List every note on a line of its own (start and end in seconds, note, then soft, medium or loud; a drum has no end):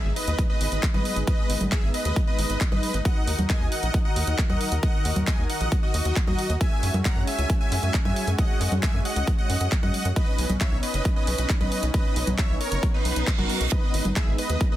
0.00 3.02 G#3 medium
0.00 3.02 B3 medium
0.00 6.57 D#4 medium
0.00 0.10 G#4 medium
0.00 0.10 E5 medium
0.00 impact medium
0.05 0.12 G#1 medium
0.16 0.41 B4 medium
0.16 0.41 D#5 medium
0.16 open hi-hat loud
0.27 0.35 D#2 medium
0.27 closed hi-hat medium
0.39 kick loud
0.39 closed hi-hat medium
0.50 0.82 B4 medium
0.50 0.82 D#5 loud
0.61 0.68 G#1 medium
0.61 open hi-hat loud
0.72 0.79 G#1 medium
0.72 closed hi-hat medium
0.83 kick loud
0.83 clap loud
0.83 closed hi-hat medium
0.94 1.01 G#1 medium
0.94 1.18 B4 medium
0.94 1.18 D#5 medium
0.94 high conga medium
1.05 open hi-hat medium
1.16 1.23 G#1 medium
1.16 closed hi-hat medium
1.27 1.60 B4 medium
1.27 1.60 D#5 loud
1.27 kick loud
1.27 closed hi-hat medium
1.50 1.57 G#1 loud
1.50 open hi-hat loud
1.61 1.68 G#1 medium
1.61 closed hi-hat medium
1.61 high conga medium
1.72 1.88 G#4 medium
1.72 1.88 E5 medium
1.72 kick loud
1.72 clap loud
1.72 closed hi-hat medium
1.83 1.90 G#1 medium
1.94 2.18 B4 medium
1.94 2.18 D#5 loud
1.94 open hi-hat loud
2.05 2.12 D#2 medium
2.05 closed hi-hat medium
2.16 kick loud
2.16 closed hi-hat medium
2.27 2.60 B4 medium
2.27 2.60 D#5 loud
2.38 2.46 G#1 medium
2.38 open hi-hat loud
2.50 2.57 G#1 medium
2.50 closed hi-hat medium
2.61 kick loud
2.61 clap loud
2.61 closed hi-hat medium
2.72 2.79 G#1 medium
2.72 2.96 B4 medium
2.72 2.96 D#5 medium
2.72 high conga medium
2.83 open hi-hat medium
2.94 3.01 G#1 medium
2.94 closed hi-hat medium
3.05 6.57 D#3 medium
3.05 10.12 F#4 medium
3.05 6.57 A#4 medium
3.05 3.38 D#5 medium
3.05 3.38 F#5 loud
3.05 kick loud
3.05 closed hi-hat medium
3.27 3.35 D#2 medium
3.27 open hi-hat loud
3.38 3.46 D#2 medium
3.38 closed hi-hat medium
3.38 high conga medium
3.50 3.66 D#5 medium
3.50 3.66 G#5 medium
3.50 kick loud
3.50 clap loud
3.50 closed hi-hat medium
3.61 3.68 D#2 medium
3.72 3.96 D#5 medium
3.72 3.96 F#5 medium
3.72 open hi-hat loud
3.83 3.90 A#1 medium
3.83 closed hi-hat medium
3.94 kick loud
3.94 closed hi-hat medium
4.05 4.38 D#5 medium
4.05 4.38 F#5 loud
4.16 4.23 D#2 medium
4.16 open hi-hat loud
4.27 4.35 D#2 medium
4.27 closed hi-hat medium
4.38 kick loud
4.38 clap loud
4.38 closed hi-hat medium
4.50 4.57 D#2 medium
4.50 4.74 D#5 medium
4.50 4.74 F#5 medium
4.50 high conga medium
4.61 open hi-hat loud
4.72 4.79 D#2 medium
4.72 closed hi-hat medium
4.83 5.15 D#5 medium
4.83 5.15 F#5 loud
4.83 kick loud
4.83 closed hi-hat medium
5.05 5.12 D#2 loud
5.05 open hi-hat loud
5.16 5.23 D#2 medium
5.16 closed hi-hat medium
5.16 high conga medium
5.27 5.44 D#5 medium
5.27 5.44 G#5 medium
5.27 kick loud
5.27 clap loud
5.27 closed hi-hat medium
5.38 5.46 D#2 medium
5.50 5.74 D#5 medium
5.50 5.74 F#5 loud
5.50 open hi-hat loud
5.61 5.68 A#1 medium
5.61 closed hi-hat medium
5.72 kick loud
5.72 closed hi-hat medium
5.83 6.15 F#4 medium
5.83 6.15 D#5 medium
5.94 6.01 D#2 medium
5.94 open hi-hat loud
6.05 6.12 D#2 medium
6.05 closed hi-hat medium
6.16 kick loud
6.16 clap loud
6.16 closed hi-hat medium
6.27 6.35 D#2 medium
6.27 6.52 F#4 medium
6.27 6.52 D#5 loud
6.27 high conga medium
6.39 open hi-hat loud
6.50 6.57 D#2 medium
6.50 closed hi-hat medium
6.61 10.13 G#3 medium
6.61 10.13 C#4 medium
6.61 6.93 E5 medium
6.61 6.93 G#5 loud
6.61 kick loud
6.61 closed hi-hat medium
6.83 6.90 F#2 loud
6.83 open hi-hat loud
6.94 7.01 F#2 medium
6.94 closed hi-hat medium
6.94 high conga medium
7.05 7.21 F#5 medium
7.05 7.21 A#5 medium
7.05 kick loud
7.05 clap loud
7.05 closed hi-hat medium
7.16 7.23 F#2 medium
7.27 7.52 E5 medium
7.27 7.52 G#5 medium
7.27 open hi-hat loud
7.38 7.46 C#2 medium
7.38 closed hi-hat medium
7.50 kick loud
7.50 closed hi-hat medium
7.61 7.93 E5 medium
7.61 7.93 G#5 medium
7.72 7.79 F#2 loud
7.72 open hi-hat loud
7.83 7.90 F#2 medium
7.83 closed hi-hat medium
7.94 kick loud
7.94 clap loud
7.94 closed hi-hat medium
8.05 8.12 F#2 medium
8.05 8.30 E5 medium
8.05 8.30 G#5 medium
8.05 high conga medium
8.16 open hi-hat medium
8.27 8.35 F#2 medium
8.27 closed hi-hat medium
8.38 8.71 D#5 medium
8.38 8.71 F#5 loud
8.38 kick loud
8.38 closed hi-hat medium
8.61 8.68 F#2 loud
8.61 open hi-hat loud
8.72 8.79 F#2 medium
8.72 closed hi-hat medium
8.72 high conga medium
8.83 8.99 E5 medium
8.83 8.99 G#5 medium
8.83 kick loud
8.83 clap loud
8.83 closed hi-hat medium
8.94 9.01 F#2 medium
9.05 9.30 D#5 medium
9.05 9.30 F#5 medium
9.05 open hi-hat medium
9.16 9.23 C#2 medium
9.16 closed hi-hat medium
9.27 kick loud
9.27 closed hi-hat medium
9.38 9.71 D#5 medium
9.38 9.71 F#5 loud
9.50 9.57 F#2 loud
9.50 open hi-hat loud
9.61 9.68 F#2 medium
9.61 closed hi-hat medium
9.72 kick loud
9.72 clap loud
9.72 closed hi-hat medium
9.83 9.90 F#2 medium
9.83 10.07 D#5 medium
9.83 10.07 F#5 loud
9.83 high conga medium
9.94 open hi-hat medium
10.05 10.12 F#2 medium
10.05 closed hi-hat medium
10.16 14.77 B3 medium
10.16 13.68 C#4 medium
10.16 14.77 D#4 loud
10.16 10.49 B4 medium
10.16 10.49 D#5 loud
10.16 kick loud
10.16 closed hi-hat medium
10.38 10.46 B1 loud
10.38 open hi-hat loud
10.50 10.57 B1 medium
10.50 closed hi-hat medium
10.50 high conga medium
10.61 10.77 C#5 medium
10.61 10.77 E5 medium
10.61 kick loud
10.61 clap loud
10.61 closed hi-hat medium
10.72 10.79 B1 medium
10.83 11.07 B4 medium
10.83 11.07 D#5 loud
10.83 open hi-hat medium
10.94 11.01 F#1 medium
10.94 closed hi-hat medium
11.05 kick loud
11.05 closed hi-hat medium
11.16 11.49 B4 medium
11.16 11.49 D#5 medium
11.27 11.35 B1 medium
11.27 open hi-hat loud
11.38 11.46 B1 medium
11.38 closed hi-hat medium
11.50 kick loud
11.50 clap loud
11.50 closed hi-hat medium
11.61 11.68 B1 medium
11.61 11.85 B4 medium
11.61 11.85 D#5 medium
11.61 high conga medium
11.72 open hi-hat medium
11.83 11.90 B1 medium
11.83 closed hi-hat medium
11.94 12.26 B4 medium
11.94 12.26 D#5 loud
11.94 kick loud
11.94 closed hi-hat medium
12.16 12.23 B1 medium
12.16 open hi-hat loud
12.27 12.35 B1 medium
12.27 closed hi-hat medium
12.27 high conga medium
12.38 12.55 C#5 medium
12.38 12.55 E5 medium
12.38 kick loud
12.38 clap loud
12.38 closed hi-hat medium
12.50 12.57 B1 medium
12.61 12.85 A#4 medium
12.61 12.85 C#5 medium
12.61 open hi-hat medium
12.72 12.79 F#1 medium
12.72 closed hi-hat medium
12.83 kick loud
12.83 closed hi-hat medium
12.83 reverse cymbal medium
12.94 13.27 D#4 medium
12.94 13.27 B4 medium
13.05 13.12 B1 medium
13.05 open hi-hat loud
13.16 13.23 B1 medium
13.16 closed hi-hat medium
13.27 kick loud
13.27 clap loud
13.27 closed hi-hat medium
13.38 13.46 F#1 medium
13.38 13.63 F#4 medium
13.38 13.63 A#4 loud
13.38 high conga medium
13.50 open hi-hat medium
13.61 13.68 B1 medium
13.61 closed hi-hat medium
13.72 14.77 G#3 medium
13.72 14.04 B4 medium
13.72 14.04 D#5 loud
13.72 kick loud
13.72 closed hi-hat medium
13.94 14.01 G#1 loud
13.94 open hi-hat loud
14.05 14.12 G#1 medium
14.05 closed hi-hat medium
14.05 high conga medium
14.16 14.33 G#4 medium
14.16 14.33 E5 medium
14.16 kick loud
14.16 clap loud
14.16 closed hi-hat medium
14.27 14.35 G#1 medium
14.38 14.63 B4 medium
14.38 14.63 D#5 medium
14.38 open hi-hat loud
14.50 14.57 D#2 medium
14.50 closed hi-hat medium
14.61 kick loud
14.61 closed hi-hat medium
14.72 14.77 B4 medium
14.72 14.77 D#5 loud